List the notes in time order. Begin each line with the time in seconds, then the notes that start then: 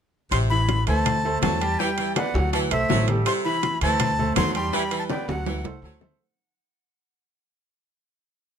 0.31 A1 C3 C6, high bongo, high conga, high timbale
0.50 E3 E4 E5 B5, high conga
0.68 high bongo, high conga, high timbale, low timbale
0.87 D2 E3 A3 A4 C5 A5, high timbale
1.05 high bongo, high conga, low conga, high timbale
1.24 A3 A4 C5, high conga
1.42 E2 F#3 A5, high bongo, low bongo, high conga, high timbale, low timbale
1.61 G3 G4 G5, high conga, high timbale
1.79 E3 G3 G4 G5, high bongo, high conga
1.98 E3, high bongo, high conga, high timbale
2.16 B3 B4 D5 F#5, high bongo, high conga, high timbale, low timbale
2.34 D2 F#3 F#4 F#5, high conga
2.53 E3 A5, high bongo, high conga, high timbale
2.71 B1 A3 A4 C5 E5, high bongo, high conga, high timbale
2.89 A1 F#3 A3 A4 C5, high bongo, low bongo, high conga, low timbale
3.08 G3 G4 A4, high bongo, high conga, high timbale
3.26 C3 C6, high bongo, high conga, high timbale
3.45 E3 E4 E5 B5, high conga
3.63 high bongo, high conga, high timbale, low timbale
3.81 D2 E3 A3 A4 C5 A5, high timbale
4.00 high bongo, high conga, low conga, high timbale
4.19 A3 A4 C5, high conga, low conga
4.36 E2 F#3 C6, high bongo, low bongo, high conga, high timbale, low timbale
4.55 G3 G4 G5 C6, high conga, high timbale
4.73 E3 G3 G4 G5 B5, high bongo, high conga
4.91 E3, high bongo, high conga, high timbale
4.99 A5
5.09 B3 B4 D5 G5, high bongo, high conga, high timbale
5.28 D2 F#3 F#4 F#5, high conga, high timbale
5.46 E3, high bongo, low timbale
5.64 A3 A4 C5, high bongo, high conga, low timbale
5.82 D2 F#3 A3 A4 C5, high conga
6.01 A3 A4 C5, low bongo, high conga, low timbale